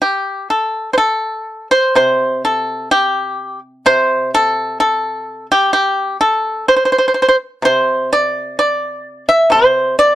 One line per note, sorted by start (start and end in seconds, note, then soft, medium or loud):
0.02 0.48 G4 medium
0.50 0.89 A4 medium
0.93 0.97 C5 soft
0.98 1.67 A4 medium
1.71 1.94 C5 medium
1.95 3.85 C3 soft
1.95 2.41 C5 medium
2.45 2.89 A4 medium
2.91 3.59 G4 medium
3.86 6.67 C3 soft
3.86 4.30 C5 medium
4.34 4.77 A4 medium
4.80 5.46 A4 medium
5.52 5.72 G4 medium
5.73 6.16 G4 medium
6.21 6.65 A4 medium
6.68 6.75 C5 medium
6.76 6.83 C5 soft
6.85 6.91 C5 soft
6.92 6.97 C5 soft
6.98 7.05 C5 soft
7.08 7.13 C5 soft
7.14 7.21 C5 soft
7.22 7.27 C5 soft
7.28 7.35 C5 soft
7.62 9.49 C3 soft
7.62 8.09 C5 medium
8.13 8.56 D5 medium
8.59 9.25 D5 medium
9.29 9.50 E5 medium
9.50 10.15 C3 soft
9.50 9.95 C5 medium
9.99 10.15 D5 medium